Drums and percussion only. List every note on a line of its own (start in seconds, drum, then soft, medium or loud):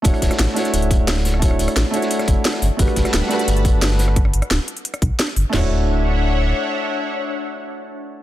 0.04 kick loud
0.04 closed hi-hat medium
0.04 closed hi-hat loud
0.14 cross-stick soft
0.14 closed hi-hat soft
0.22 kick medium
0.22 snare medium
0.22 closed hi-hat medium
0.31 cross-stick medium
0.31 snare medium
0.31 closed hi-hat soft
0.39 snare loud
0.39 closed hi-hat medium
0.39 closed hi-hat loud
0.47 snare soft
0.56 snare medium
0.56 closed hi-hat medium
0.65 snare soft
0.65 closed hi-hat soft
0.74 closed hi-hat loud
0.82 closed hi-hat soft
0.91 kick loud
0.91 closed hi-hat medium
1.07 snare loud
1.07 closed hi-hat loud
1.07 open hi-hat medium
1.16 snare soft
1.25 snare medium
1.25 closed hi-hat medium
1.25 open hi-hat medium
1.34 cross-stick soft
1.42 kick loud
1.42 closed hi-hat loud
1.42 closed hi-hat medium
1.51 cross-stick soft
1.59 closed hi-hat medium
1.68 cross-stick soft
1.68 closed hi-hat medium
1.68 closed hi-hat soft
1.76 snare loud
1.76 closed hi-hat loud
1.76 closed hi-hat medium
1.94 closed hi-hat medium
2.02 snare soft
2.02 closed hi-hat soft
2.11 closed hi-hat medium
2.11 closed hi-hat loud
2.19 cross-stick medium
2.19 snare soft
2.19 closed hi-hat soft
2.28 kick loud
2.28 closed hi-hat medium
2.45 snare loud
2.45 closed hi-hat medium
2.54 cross-stick soft
2.54 snare medium
2.62 closed hi-hat medium
2.62 open hi-hat medium
2.79 kick loud
2.79 closed hi-hat medium
2.87 cross-stick soft
2.87 closed hi-hat soft
2.96 kick medium
2.96 snare medium
2.96 closed hi-hat medium
3.05 cross-stick soft
3.05 snare medium
3.05 closed hi-hat soft
3.13 snare loud
3.13 closed hi-hat medium
3.23 snare soft
3.31 snare soft
3.31 closed hi-hat medium
3.39 snare soft
3.39 closed hi-hat soft
3.48 closed hi-hat medium
3.57 closed hi-hat soft
3.65 kick loud
3.65 closed hi-hat medium
3.82 snare loud
3.82 closed hi-hat medium
3.82 open hi-hat medium
3.91 snare soft
3.99 snare medium
3.99 closed hi-hat medium
3.99 open hi-hat medium
4.08 cross-stick soft
4.16 kick loud
4.16 closed hi-hat medium
4.25 cross-stick soft
4.34 closed hi-hat medium
4.42 cross-stick soft
4.42 closed hi-hat soft
4.51 snare loud
4.51 closed hi-hat medium
4.68 closed hi-hat medium
4.77 closed hi-hat soft
4.85 closed hi-hat medium
4.94 cross-stick soft
4.94 closed hi-hat soft
5.02 kick loud
5.02 closed hi-hat medium
5.19 snare loud
5.19 closed hi-hat medium
5.28 cross-stick soft
5.36 open hi-hat medium
5.53 snare loud
5.53 floor tom loud
5.53 crash medium